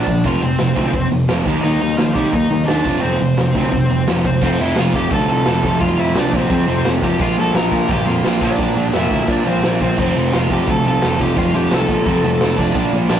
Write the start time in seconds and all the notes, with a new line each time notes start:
Already playing: D4 D5
0.06 A#1 A#2 F3, kick, open hi-hat
0.24 F1 F2 C3 F3 F4, kick, open hi-hat
0.42 F1 F2 C3 C4 C5, open hi-hat
0.58 F1 F2 C3, snare, open hi-hat
0.76 D2 F2 C3 F3, kick, open hi-hat
0.93 F1 F2 C3, kick, open hi-hat
1.11 F1 F2 C3, open hi-hat
1.28 F1 F2 C3 F3, snare, open hi-hat
1.46 D#2 D#3 A#3 D#4, kick, open hi-hat
1.62 D#2 D#3 A#3 D#4 D#5, open hi-hat
1.80 D#2 D#3 A#3, open hi-hat
1.97 D#2 D#3 F3 A#3 F4, snare, open hi-hat
2.14 C2 D#3 G3 A#3 D#4 G4, kick, open hi-hat
2.31 D#2 D#3 A#3 D#4 D#5, kick, open hi-hat
2.51 D#2 D#3 A#3, open hi-hat
2.65 D#2 D#3 A#3 D4 D#4 D5, snare, open hi-hat
2.85 F1 F2 C3 F3, kick, open hi-hat
2.99 F1 F2 C4 C5, open hi-hat
3.04 C3 F3
3.20 F1 F2 C3, open hi-hat
3.37 F1 F2 C3, snare, open hi-hat
3.55 D2 F2 C3 F3, kick, open hi-hat
3.72 F1 F2 C3, kick, open hi-hat
3.90 F1 F2 C3, open hi-hat
4.07 F1 F2 C3 F3, snare, open hi-hat
4.24 F1 F2 C3 C4 C5, kick, open hi-hat
4.41 F1 F2 C3 F3 C4 C5, kick, crash
4.58 F1 F2 C3 F3 E4 E5
4.76 F1 F2 C3 F3 F4 F5, snare, open hi-hat
4.94 F1 F2 C3 F3 G4 G5, kick
5.10 D2 F2 C3 F3 A4 A5, kick, open hi-hat
5.29 C2 F2 C3 F3 A4 A5
5.45 F1 F2 C3 F3, snare, open hi-hat
5.62 F2 C3 F3, kick
5.80 F1 F2 C3 F3 F4 F5, kick, open hi-hat
5.98 F1 F2 C3 F3 E4 E5
6.15 C2 F2 C3 F3 D4 D5, snare, open hi-hat
6.33 A#1 F2 C3 F3 C4 C5, kick
6.50 F2 C3 F3, kick, open hi-hat
6.67 F1 F2 C3 F3
6.84 F1 F2 C3 F3, snare, open hi-hat
7.02 F1 F2 C3 F3 G4 G5, kick
7.19 A#1 A#2 F3 A#3 F4 F5, kick, open hi-hat
7.38 A#1 A#2 F3 A#3 A4 A5
7.54 A#1 A#2 F3 A#3 A#4 A#5, snare, open hi-hat
7.72 A#1 A#2 F3 A#3, kick
7.89 G1 A#2 F3 A#3 G4 G5, kick, open hi-hat
8.07 F2 A#2 F3 A#3 F4 F5
8.24 A#1 A#2 F3 A#3, snare, open hi-hat
8.41 A#2 F3 A#3 D4 D5, kick
8.58 A#1 A#2 F3 A#3, kick, open hi-hat
8.75 A#1 A#2 F3 A#3
8.93 F1 A#2 F3 A#3 E4 E5, snare, open hi-hat
9.10 D2 A#2 F3 A#3, kick
9.28 A#2 F3 A#3 D4 D5, kick, open hi-hat
9.45 A#1 A#2 F3 A#3 C4 C5
9.62 A#1 A#2 F3 A#3, snare, open hi-hat
9.80 A#1 A#2 F3 A#3 C4 C5, kick
9.97 F1 F2 C3 F3 C4 C5, kick, crash
10.15 F1 F2 C3 F3
10.32 F1 F2 C3 F3 F4 F5, snare, open hi-hat
10.49 F1 F2 C3 F3 G4, kick
10.53 G5
10.66 D2 F2 C3 F3 A4, kick, open hi-hat
10.70 A5
10.84 C2 F2 C3 F3 A4
10.88 A5
11.01 F1 F2 C3 F3, snare, open hi-hat
11.19 F2 C3 F3 G4 G5, kick
11.35 F1 F2 C3 F3 F4 F5, kick, open hi-hat
11.54 F1 F2 C3 F3 G4 G5
11.71 C2 F2 C3 F3 A4 A5, snare, open hi-hat
11.88 A#1 F2 C3 F3, kick
12.06 F2 C3 F3, kick, open hi-hat
12.23 F1 F2 C3 F3
12.40 F1 F2 C3 F3, snare, open hi-hat
12.58 F1 F2 C3 F3 D4 D5, kick
12.75 A#1 A#2 F3 A#3, kick, open hi-hat
12.93 A#1 A#2 F3 A#3
13.09 A#1 A#2 F3 A#3 D4 D5, snare, open hi-hat